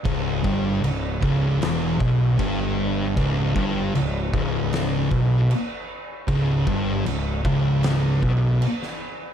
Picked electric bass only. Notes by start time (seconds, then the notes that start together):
0.05 C#1
0.44 G1
0.84 C#1
1.23 C#1
1.62 E1
2.01 B1
2.39 G1
3.17 C#1
3.56 G1
3.95 C#1
4.33 C#1
5.11 B1
6.28 C#1
6.67 G1
7.06 C#1
7.45 C#1
8.23 B1